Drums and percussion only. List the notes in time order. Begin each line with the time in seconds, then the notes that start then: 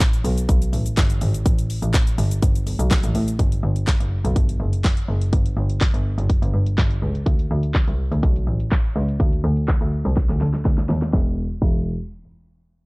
0.00 kick, snare, clap, closed hi-hat, shaker
0.13 closed hi-hat, shaker
0.25 open hi-hat, shaker
0.38 closed hi-hat, shaker
0.49 kick, closed hi-hat, shaker
0.62 closed hi-hat, shaker
0.73 open hi-hat, shaker
0.86 closed hi-hat, shaker
0.97 kick, snare, clap, closed hi-hat, shaker
1.10 closed hi-hat, shaker
1.21 open hi-hat, shaker
1.34 closed hi-hat, shaker
1.46 kick, closed hi-hat, shaker
1.59 closed hi-hat, shaker
1.70 open hi-hat, shaker
1.82 closed hi-hat, shaker
1.94 kick, snare, clap, closed hi-hat, shaker
2.07 closed hi-hat, shaker
2.18 open hi-hat, shaker
2.31 closed hi-hat, shaker
2.43 kick, closed hi-hat, shaker
2.55 closed hi-hat, shaker
2.67 open hi-hat, shaker
2.79 closed hi-hat, shaker
2.91 kick, snare, clap, closed hi-hat, shaker
3.03 closed hi-hat, shaker
3.15 open hi-hat, shaker
3.28 closed hi-hat, shaker
3.39 kick, closed hi-hat
3.52 closed hi-hat
3.76 closed hi-hat
3.87 kick, snare, clap, closed hi-hat
4.01 closed hi-hat
4.25 closed hi-hat
4.36 kick, closed hi-hat
4.49 closed hi-hat
4.73 closed hi-hat
4.84 kick, snare, clap, closed hi-hat
4.97 closed hi-hat
5.21 closed hi-hat
5.33 kick, closed hi-hat
5.46 closed hi-hat
5.70 closed hi-hat
5.81 kick, snare, clap, closed hi-hat
5.94 closed hi-hat
6.18 closed hi-hat
6.30 kick, closed hi-hat
6.42 closed hi-hat
6.66 closed hi-hat
6.78 kick, snare, clap, closed hi-hat
6.90 closed hi-hat
7.15 closed hi-hat
7.26 kick, closed hi-hat
7.39 closed hi-hat
7.63 closed hi-hat
7.75 kick, snare, clap, closed hi-hat
7.88 closed hi-hat
8.12 closed hi-hat
8.23 kick, closed hi-hat
8.36 closed hi-hat
8.60 closed hi-hat
8.71 kick, snare, clap, closed hi-hat
8.84 closed hi-hat
9.09 closed hi-hat
9.20 kick, closed hi-hat, shaker
9.33 closed hi-hat, shaker
9.44 shaker
9.57 closed hi-hat, shaker
9.68 kick, snare, clap, closed hi-hat, shaker
9.81 closed hi-hat, shaker
9.92 shaker
10.05 closed hi-hat, shaker
10.17 kick, snare, closed hi-hat, shaker
10.29 snare, closed hi-hat, shaker
10.41 snare
10.54 snare, closed hi-hat, shaker
10.65 kick, snare, closed hi-hat
10.78 snare, closed hi-hat
10.89 snare
11.02 snare, closed hi-hat, shaker
11.13 kick, snare
11.62 kick, crash